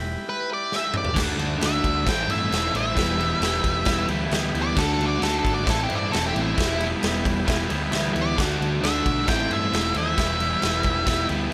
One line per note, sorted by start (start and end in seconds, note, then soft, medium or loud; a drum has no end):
0.00 0.15 E1 medium
0.00 1.12 E4 medium
0.00 1.12 G4 medium
0.00 1.12 B4 medium
0.29 0.50 B4 loud
0.53 0.73 D5 medium
0.72 0.95 E5 loud
0.72 snare medium
0.94 1.17 D5 loud
0.94 mid tom medium
1.05 floor tom loud
1.14 1.34 D2 loud
1.14 1.57 D3 medium
1.14 1.39 A3 loud
1.14 1.38 D4 loud
1.14 2.04 F#4 medium
1.14 2.04 A4 medium
1.14 2.05 D5 medium
1.14 kick loud
1.14 crash loud
1.18 1.36 F#4 loud
1.18 snare loud
1.37 1.57 D2 medium
1.37 1.58 A3 medium
1.37 1.60 D4 medium
1.37 1.61 F#4 medium
1.37 ride medium
1.58 1.79 D2 medium
1.58 2.03 D3 medium
1.58 2.04 A3 medium
1.58 2.05 D4 medium
1.58 ride loud
1.62 2.05 F#4 medium
1.62 2.07 E5 loud
1.62 snare loud
1.84 2.08 D2 medium
1.84 kick medium
1.84 ride medium
2.05 2.25 A1 medium
2.05 2.51 A2 loud
2.05 2.50 E3 loud
2.05 2.32 A3 loud
2.05 2.29 C4 loud
2.05 2.94 E4 medium
2.05 2.95 A4 medium
2.05 2.94 C5 medium
2.05 kick loud
2.05 snare loud
2.05 ride loud
2.09 2.28 E4 loud
2.09 2.29 G5 medium
2.27 2.46 G2 medium
2.27 2.53 C4 medium
2.27 2.54 E4 medium
2.27 2.74 E5 loud
2.27 ride medium
2.33 2.52 A3 medium
2.51 2.69 E1 medium
2.51 2.94 E3 medium
2.51 2.77 A3 medium
2.51 2.75 C4 medium
2.51 snare loud
2.51 ride loud
2.55 2.73 E4 medium
2.73 2.92 A1 medium
2.73 2.96 C4 medium
2.73 2.95 E4 medium
2.73 4.07 E5 medium
2.73 ride medium
2.78 2.96 A3 medium
2.95 3.33 E1 loud
2.95 3.40 E3 loud
2.95 3.20 G3 medium
2.95 3.19 B3 loud
2.95 4.73 E4 medium
2.95 4.73 G4 medium
2.95 4.73 B4 medium
2.95 kick loud
2.95 snare loud
2.95 ride loud
2.99 3.17 E4 loud
3.18 3.41 G3 medium
3.18 3.42 B3 medium
3.18 3.43 E4 medium
3.18 ride medium
3.40 3.59 E1 medium
3.40 3.85 E3 medium
3.40 3.87 G3 medium
3.40 3.87 B3 medium
3.40 3.89 E4 medium
3.40 snare loud
3.40 ride loud
3.64 3.82 E1 medium
3.64 kick medium
3.64 ride medium
3.85 4.04 E1 loud
3.85 4.30 E3 loud
3.85 4.12 G3 loud
3.85 4.10 B3 loud
3.85 kick loud
3.85 snare loud
3.85 ride loud
3.90 4.08 E4 loud
4.08 4.27 D2 medium
4.08 4.33 B3 medium
4.08 4.34 E4 medium
4.08 ride medium
4.13 4.32 G3 medium
4.31 4.49 D2 loud
4.31 4.75 E3 medium
4.31 4.56 G3 medium
4.31 4.55 B3 medium
4.31 snare loud
4.31 ride loud
4.36 4.53 E4 medium
4.54 4.72 D2 loud
4.54 4.77 G3 medium
4.54 4.76 B3 medium
4.54 4.76 E4 medium
4.54 ride medium
4.62 4.77 D5 loud
4.76 4.95 D2 loud
4.76 5.19 D3 loud
4.76 5.01 A3 loud
4.76 5.00 D4 loud
4.76 5.65 F#4 medium
4.76 5.65 A4 medium
4.76 4.92 A4 loud
4.76 5.65 D5 medium
4.76 kick loud
4.76 snare loud
4.76 crash loud
4.80 4.97 F#4 loud
4.93 5.07 A4 medium
4.98 5.17 D2 medium
4.98 5.20 A3 medium
4.98 5.22 D4 medium
4.98 5.23 F#4 medium
4.98 ride medium
5.06 5.21 D5 loud
5.20 5.39 D2 medium
5.20 5.65 D3 medium
5.20 5.64 A3 medium
5.20 5.66 D4 medium
5.20 5.37 A4 loud
5.20 snare loud
5.20 ride medium
5.24 5.67 F#4 medium
5.39 5.53 A4 medium
5.45 5.63 G#1 medium
5.45 kick medium
5.45 ride medium
5.54 5.68 D5 medium
5.64 5.85 A1 loud
5.64 6.11 A2 medium
5.64 6.10 E3 loud
5.64 5.91 A3 loud
5.64 5.88 C4 loud
5.64 6.55 E4 medium
5.64 6.55 A4 medium
5.64 6.55 C5 medium
5.64 kick loud
5.64 ride loud
5.68 5.86 E4 loud
5.68 5.83 A4 loud
5.68 snare loud
5.83 5.97 G4 medium
5.88 6.08 G2 medium
5.88 6.12 C4 medium
5.88 6.13 E4 medium
5.88 ride medium
5.92 6.11 A3 medium
5.92 6.11 D5 loud
6.11 6.31 E1 medium
6.11 6.55 E3 medium
6.11 6.36 A3 medium
6.11 6.34 C4 medium
6.11 6.32 E4 medium
6.11 6.26 A4 medium
6.11 snare loud
6.11 ride loud
6.27 6.41 G4 medium
6.33 6.53 A1 medium
6.33 6.56 C4 medium
6.33 6.55 E4 medium
6.33 ride medium
6.37 6.57 A3 medium
6.37 6.85 E4 loud
6.56 6.94 E1 loud
6.56 7.00 E3 loud
6.56 6.83 G3 medium
6.56 6.80 B3 loud
6.56 8.34 E4 medium
6.56 8.34 G4 medium
6.56 8.34 B4 medium
6.56 kick loud
6.56 ride loud
6.60 6.79 E4 loud
6.60 snare loud
6.80 7.03 B3 medium
6.80 7.04 E4 medium
6.80 ride medium
6.84 7.02 G3 medium
7.02 7.21 E1 medium
7.02 7.44 E3 medium
7.02 7.46 G3 medium
7.02 7.48 B3 medium
7.02 7.48 E4 medium
7.02 snare loud
7.02 ride loud
7.25 7.43 E1 medium
7.25 kick medium
7.25 ride medium
7.45 7.66 E1 medium
7.45 7.90 E3 loud
7.45 7.71 G3 loud
7.45 7.69 B3 loud
7.45 7.67 E4 loud
7.45 kick loud
7.45 ride loud
7.50 snare loud
7.68 7.89 D2 loud
7.68 7.94 B3 medium
7.68 7.95 E4 medium
7.68 ride medium
7.72 7.92 G3 medium
7.92 8.10 D2 medium
7.92 8.36 E3 medium
7.92 8.16 G3 medium
7.92 8.15 B3 medium
7.92 snare loud
7.92 ride loud
7.96 8.12 E4 medium
8.13 8.38 D2 medium
8.13 8.37 B3 medium
8.13 8.35 E4 medium
8.13 ride medium
8.17 8.37 G3 medium
8.22 8.37 D5 loud
8.36 8.56 D2 loud
8.36 8.80 D3 loud
8.36 8.61 A3 loud
8.36 8.59 D4 loud
8.36 9.26 F#4 medium
8.36 9.26 A4 medium
8.36 9.27 D5 medium
8.36 kick loud
8.36 snare loud
8.36 crash loud
8.41 8.57 F#4 loud
8.58 8.78 D2 medium
8.58 8.82 A3 medium
8.58 8.83 D4 medium
8.58 8.84 F#4 medium
8.62 ride medium
8.81 9.00 D2 medium
8.81 9.25 D3 medium
8.81 9.26 A3 medium
8.81 9.27 D4 medium
8.81 9.27 E5 loud
8.81 snare loud
8.81 ride loud
8.85 9.28 F#4 medium
9.06 9.24 B1 loud
9.06 kick medium
9.06 ride medium
9.27 9.46 A1 loud
9.27 9.72 A2 loud
9.27 9.72 E3 loud
9.27 9.54 A3 loud
9.27 9.52 C4 loud
9.27 10.15 E4 medium
9.27 9.49 E4 loud
9.27 10.17 A4 medium
9.27 10.16 C5 medium
9.27 9.50 G5 loud
9.27 kick loud
9.27 snare loud
9.27 ride loud
9.51 9.68 G2 medium
9.51 9.75 C4 medium
9.51 9.75 E4 medium
9.51 9.95 E5 loud
9.51 ride medium
9.55 9.73 A3 medium
9.73 9.91 E1 medium
9.73 10.15 E3 medium
9.73 9.97 A3 medium
9.73 9.96 C4 medium
9.73 9.94 E4 medium
9.73 snare loud
9.73 ride medium
9.94 10.13 D#2 medium
9.94 10.17 C4 medium
9.94 10.16 E4 medium
9.94 11.27 E5 medium
9.94 ride medium
9.99 10.17 A3 medium
10.16 10.54 E1 loud
10.16 10.61 E3 loud
10.16 10.43 G3 medium
10.16 10.41 B3 loud
10.16 11.53 E4 medium
10.16 10.39 E4 loud
10.16 11.53 G4 medium
10.16 11.53 B4 medium
10.16 kick loud
10.16 snare loud
10.16 ride loud
10.40 10.62 G3 medium
10.40 10.65 B3 medium
10.40 10.66 E4 medium
10.40 ride medium
10.62 10.81 E1 medium
10.62 11.05 E3 medium
10.62 11.07 G3 medium
10.62 11.08 B3 medium
10.62 snare loud
10.62 ride loud
10.67 11.09 E4 medium
10.83 11.03 E1 medium
10.83 kick medium
10.83 ride medium
11.07 11.25 E1 loud
11.07 11.50 E3 loud
11.07 11.32 G3 loud
11.07 11.30 B3 loud
11.07 11.28 E4 loud
11.07 kick loud
11.07 snare loud
11.07 ride loud
11.29 11.48 D2 loud
11.29 11.51 G3 medium
11.29 11.53 B3 medium
11.29 11.53 E4 medium
11.29 ride medium